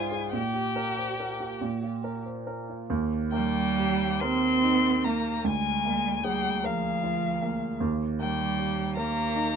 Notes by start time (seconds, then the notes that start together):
Already playing: G#2 F4 G#4 C5 D5 G#5
0.12 G#4
0.32 A#2 G4 G5
0.54 G4
0.76 A#4
0.98 C5
1.20 A#4
1.40 G4
1.61 A#2
1.83 F4
2.04 A#4
2.26 C5
2.47 A#4
2.69 F4
2.90 D#2
3.32 G3 A#3 G5
3.78 G4
4.21 C4 A#4 C6
4.63 D#4
5.04 A#3 A#5
5.44 D2 G#3 G#5
5.85 A#3
6.24 G3 G#4 G5
6.64 F3 A#4 F5
7.03 F4
7.43 A#3
7.80 D#2
8.20 G3 A#3 G5
8.58 G4
8.96 A#3 A#4 A#5
9.36 D#4